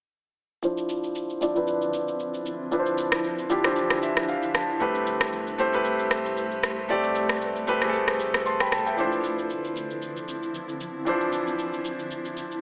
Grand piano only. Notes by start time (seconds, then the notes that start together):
0.63 F3 D4 E4 C5
1.41 F3 D4 E4 D5
1.55 F3 D4 E4 B4
2.71 F3 D4 E4 B4
2.79 C5
3.49 F3 D4 E4 G4
3.64 E3 D4 E4 C5
3.70 F3
4.03 E5
4.29 F5
4.55 A5
4.80 A3 C4 G4 B4
5.58 A3 C4 G4 C5
5.73 A3 C4 G4 B4
6.89 A3 C4 G4 D5
7.67 A3 C4 G4 B4
7.81 A3 C4 G4 G#4
7.89 A4
8.46 A5 C6
8.60 G5 B5
8.72 A5
8.86 E5 G5
8.96 E3 D4 E4 C5
9.03 F3
11.05 E3 D4 E4 C5
11.11 F3